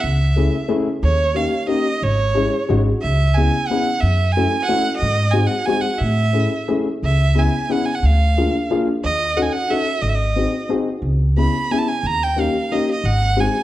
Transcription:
0.01 C#2 E5
0.36 A3 C#4 E4 G#4
0.68 A3 C#4 E4 G#4
1.03 D#2 C#5
1.34 A#3 C#4 D#4 G4 F5
1.67 A#3 C#4 D#4 G4 D#5
2.02 G#1 C#5
2.35 G#3 C#4 E4 G#4
2.69 G#1 G#3 C#4 D#4 F#4
3.02 C#2 E5
3.35 B3 C#4 E4 G#4 G#5
3.68 B3 C#4 E4 G#4 F#5
4.00 F#2 E5
4.32 G#5
4.37 A3 C#4 E4 F#4
4.60 F#5 G#5
4.69 A3 C#4 E4 F#4
4.97 D#5
5.02 G#2
5.31 G#3 C4 D#4 F#4 G#5
5.47 F#5
5.65 G#3 C4 D#4 F#4 G#5
5.81 F#5
5.98 A2 E5
6.33 A3 C#4 E4 G#4
6.68 A3 C#4 E4 G#4
7.03 C#2 E5
7.35 B3 C#4 E4 G#4 G#5
7.69 B3 C#4 E4 G#4 F#5
7.85 G#5
7.95 F#5
8.03 D2 F5
8.37 A#3 D4 F4 G#4
8.70 A#3 D4 F4 G#4
9.04 D#2 D#5
9.37 C#4 D#4 F#4 A4 F#5
9.42 G#5
9.52 F#5
9.70 C#4 D#4 F#4 A4 E5
10.02 G#1 D#5
10.09 E5
10.15 D#5
10.36 C4 D#4 F#4 G#4
10.69 C4 D#4 F#4 G#4
11.02 C#2
11.37 B3 C#4 E4 G#4 B5
11.71 B3 C#4 E4 G#4 G#5
11.78 A5
11.88 G#5
12.03 D#2 A#5
12.23 G5
12.36 A#3 C#4 D#4 G4 F5
12.72 A#3 C#4 D#4 G4 D#5
12.91 D#5
13.04 G#1 F#5
13.36 G#3 C4 D#4 F#4 G#5

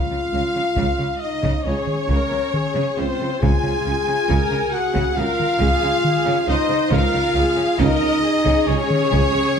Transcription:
Already playing: F4 F5
0.11 C#3
0.33 C#2 C#3
0.56 C#3
0.76 C#2 C#3, taiko
0.99 C#3
1.20 D#4 D#5
1.43 C#3, taiko
1.63 C#2 C#3 C#4 G#4 C#5
1.67 C#5
1.87 taiko mid
2.08 C#2 C#3 A#4, taiko
2.31 C#3
2.54 G#4, taiko mid
2.75 C#3
2.96 C#2 C#3 C4 F4 C5
3.20 C#3
3.39 C#2 C#3 G#4 G#5, taiko
3.44 G#5
3.63 C#3
3.86 C#2 C#3
4.07 C#3
4.29 C#2 C#3 A#4, taiko
4.51 C#3
4.70 F#4 F#5
4.75 G#4 F#5
4.94 C#3, taiko
5.15 C#2 C#3 F4 F5
5.19 A#4 F5
5.40 taiko mid
5.59 C#2 C#3 G#4, taiko
5.83 C#3
6.05 G#4, taiko mid
6.26 C#3
6.47 C#2 C#3 D#4 C5 D#5
6.69 C#3
6.90 C#2 C#3 F4 A#4 F5, taiko
7.13 C#3
7.34 C#2 C#3 G#4
7.56 C#3
7.78 C#2 C#3 D#4 A#4 D#5, taiko
8.00 C#3
8.24 G#4
8.45 C#3, taiko
8.66 C#2 C#3 C#4 C#5
8.90 taiko mid
9.12 C#2 C#3, taiko
9.34 C#3

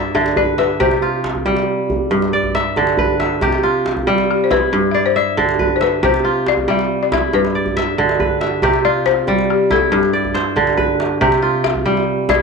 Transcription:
Already playing: G2 E4 D5 E5
0.15 D3 E5, djembe tone
0.26 djembe slap
0.36 B4 D5, djembe bass
0.58 B4 E5, djembe slap
0.80 C3 G4 C5, djembe tone, djembe bass
0.91 djembe slap
1.02 F4
1.24 djembe slap
1.35 djembe bass
1.46 G3, djembe slap, djembe tone
1.56 djembe slap
1.90 djembe bass
2.11 G2, djembe tone
2.22 djembe slap
2.33 D5, djembe slap
2.43 djembe slap, djembe bass
2.55 E5, djembe slap
2.76 D3, djembe tone
2.87 djembe slap
2.97 B4, djembe bass
3.20 E5, djembe slap
3.41 C3 G4, djembe tone, djembe bass
3.52 djembe slap
3.63 F4
3.86 djembe slap
3.97 djembe bass
4.07 G3, djembe slap, djembe tone
4.18 djembe slap
4.31 G4
4.44 C5
4.50 E4 B4, djembe slap, djembe bass
4.73 G2, djembe tone
4.91 D5 E5, djembe slap
5.06 C5, djembe slap
5.16 D5 E5
5.37 D3, djembe tone
5.49 djembe slap
5.59 B4, djembe bass
5.76 C5
5.81 B4 E5, djembe slap
6.03 C3 G4 C5, djembe slap, djembe tone, djembe bass
6.14 djembe slap
6.25 F4, djembe slap
6.46 D5, djembe slap
6.57 djembe bass
6.68 G3 E5, djembe tone
6.79 djembe slap
7.01 D5, djembe slap
7.12 E4 E5, djembe slap, djembe bass
7.33 G2 B4, djembe slap, djembe tone
7.45 djembe slap
7.55 D5, djembe slap
7.66 djembe bass
7.77 E5, djembe slap
7.98 D3, djembe slap, djembe tone
8.09 djembe slap
8.20 B4, djembe bass
8.41 E5, djembe slap
8.62 C3 G4, djembe tone, djembe bass
8.74 djembe slap
8.85 F4 D5
9.06 C5, djembe slap
9.27 G3, djembe slap, djembe tone
9.38 djembe slap
9.50 G4
9.71 E4 A4, djembe slap, djembe bass
9.92 G2 G4, djembe tone
10.03 djembe slap
10.13 D5, djembe slap
10.25 djembe slap, djembe bass
10.34 C5, djembe slap
10.56 D3, djembe tone
10.67 djembe slap
10.77 B4, djembe bass
11.00 djembe slap
11.21 C3 G4, djembe tone, djembe bass
11.32 djembe slap
11.42 F4
11.64 E5, djembe slap
11.75 djembe bass
11.86 G3, djembe slap, djembe tone
11.97 djembe slap
12.29 E4 D5, djembe slap, djembe bass

